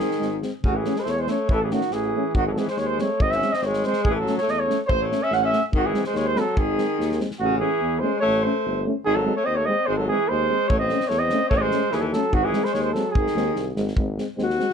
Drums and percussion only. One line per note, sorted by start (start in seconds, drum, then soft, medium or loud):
0.11 snare soft
0.22 snare soft
0.43 snare soft
0.64 kick medium
0.85 snare soft
0.96 snare soft
1.06 snare soft
1.27 snare soft
1.49 kick medium
1.71 snare soft
1.81 snare soft
1.91 snare soft
2.35 kick medium
2.57 snare soft
2.68 snare soft
2.77 snare soft
2.99 snare soft
3.20 kick medium
3.32 snare soft
3.42 snare soft
3.54 snare soft
3.62 snare soft
3.73 snare soft
3.83 snare soft
3.93 snare soft
4.05 kick medium
4.27 snare soft
4.38 snare soft
4.48 snare soft
4.70 snare soft
4.89 kick medium
5.12 snare soft
5.32 snare soft
5.53 snare soft
5.73 kick medium
5.94 snare soft
6.04 snare soft
6.15 snare soft
6.36 snare soft
6.57 kick medium
6.78 snare soft
7.01 snare soft
7.12 snare soft
7.20 snare soft
7.31 snare soft
10.70 kick medium
10.89 snare soft
11.00 snare soft
11.10 snare soft
11.30 snare soft
11.51 kick medium
11.71 snare soft
11.92 snare soft
12.13 snare soft
12.33 kick medium
12.53 snare soft
12.65 snare soft
12.74 snare soft
12.95 snare soft
13.15 kick medium
13.27 snare soft
13.37 snare soft
13.56 snare soft
13.76 snare soft
13.88 snare soft
13.97 kick medium
14.18 snare soft
14.39 snare soft
14.50 snare soft
14.60 snare soft